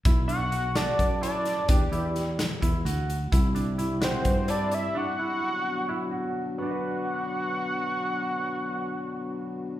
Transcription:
0.05 0.88 B1 medium
0.05 0.20 E4 medium
0.05 kick loud
0.05 closed hi-hat medium
0.28 0.42 D4 medium
0.28 0.77 F#5 loud
0.28 0.77 C#6 loud
0.28 closed hi-hat medium
0.51 0.66 F#4 medium
0.51 closed hi-hat medium
0.75 1.03 F#4 medium
0.75 1.22 D5 medium
0.75 1.22 A5 medium
0.75 snare medium
0.75 closed hi-hat medium
0.99 1.61 F#2 medium
0.99 kick medium
0.99 closed hi-hat medium
1.21 1.50 E4 medium
1.21 1.69 D5 medium
1.21 1.70 A5 medium
1.21 closed hi-hat medium
1.45 snare soft
1.45 closed hi-hat medium
1.69 1.90 E2 medium
1.69 1.83 D4 medium
1.69 2.39 G4 medium
1.69 2.39 D5 medium
1.69 kick loud
1.69 closed hi-hat medium
1.92 2.54 E2 medium
1.92 2.21 E4 medium
1.92 closed hi-hat soft
2.16 snare soft
2.16 closed hi-hat soft
2.39 snare loud
2.39 closed hi-hat medium
2.62 2.83 E2 medium
2.62 2.76 E4 medium
2.62 kick medium
2.62 closed hi-hat medium
2.85 3.27 D2 medium
2.85 3.14 F#4 medium
2.85 closed hi-hat medium
3.10 closed hi-hat medium
3.32 4.15 C2 medium
3.32 3.97 G3 medium
3.32 3.98 C4 medium
3.32 3.46 E4 medium
3.32 3.98 E4 medium
3.32 3.98 G4 medium
3.32 kick medium
3.32 closed hi-hat medium
3.55 3.69 D4 medium
3.55 closed hi-hat soft
3.78 3.93 E4 medium
3.78 closed hi-hat medium
4.00 4.67 G3 medium
4.00 4.67 C4 medium
4.00 4.68 E4 medium
4.00 4.30 F#4 medium
4.00 4.68 G4 medium
4.00 4.51 C5 medium
4.00 4.51 G5 medium
4.00 snare loud
4.00 closed hi-hat medium
4.25 4.88 G2 medium
4.25 kick medium
4.25 closed hi-hat medium
4.48 4.77 E4 medium
4.48 4.76 D5 medium
4.48 4.76 A5 medium
4.48 closed hi-hat medium
4.71 4.95 G3 medium
4.71 4.95 C4 medium
4.71 4.95 E4 medium
4.71 4.95 G4 medium
4.71 4.99 E5 medium
4.71 4.99 B5 medium
4.71 closed hi-hat medium
4.95 5.09 D4 medium
4.95 6.36 F#5 loud
4.95 6.36 C#6 loud
5.19 5.48 E4 medium
5.30 5.96 F#3 medium
5.30 5.96 B3 medium
5.30 5.96 D4 medium
5.30 5.96 F#4 medium
5.89 6.03 E4 medium
6.00 6.55 F#3 medium
6.00 6.55 B3 medium
6.00 6.55 D4 medium
6.00 6.55 F#4 medium
6.11 6.40 F#4 medium
6.58 9.80 F#3 medium
6.58 9.80 B3 medium
6.58 9.80 D4 medium
6.58 9.80 F#4 medium
6.58 9.80 F#5 medium
6.58 9.80 C#6 medium
6.62 9.80 D4 medium
6.62 9.80 F#4 medium
6.70 9.80 B4 medium

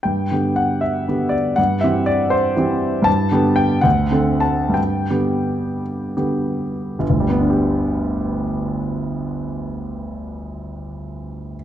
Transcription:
0.03 0.31 G2 soft
0.03 0.57 G5 medium
0.31 1.04 D3 soft
0.31 1.04 B3 soft
0.31 1.04 G4 soft
0.56 0.82 F#5 medium
0.81 1.32 E5 medium
1.08 1.54 D3 soft
1.08 1.54 B3 soft
1.08 1.54 G4 soft
1.29 1.56 D5 medium
1.56 1.82 G2 soft
1.56 1.82 F#5 medium
1.81 2.53 E3 soft
1.81 2.53 C4 soft
1.81 2.54 G4 soft
1.81 2.07 E5 medium
2.06 2.32 D5 medium
2.30 3.05 C5 medium
2.56 3.02 E3 soft
2.56 3.02 C4 soft
2.56 3.03 G4 soft
3.02 3.29 G2 medium
3.02 3.57 A5 medium
3.31 3.80 D3 soft
3.31 3.81 B3 soft
3.31 3.81 G4 soft
3.56 3.84 G5 medium
3.81 4.12 D2 medium
3.81 4.42 F#5 medium
4.11 4.71 D3 soft
4.11 4.72 C4 soft
4.11 4.72 A4 soft
4.40 4.74 A5 medium
4.69 5.06 G2 soft
4.74 5.80 G5 medium
5.10 6.14 D3 soft
5.10 6.14 B3 soft
5.10 6.14 G4 soft
6.17 6.95 D3 soft
6.17 6.95 B3 soft
6.17 6.95 G4 soft
6.99 11.54 G1 medium
7.10 11.64 D2 soft
7.20 11.64 G3 soft
7.30 11.64 B3 soft
7.40 11.64 D4 soft
7.50 11.64 G4 soft

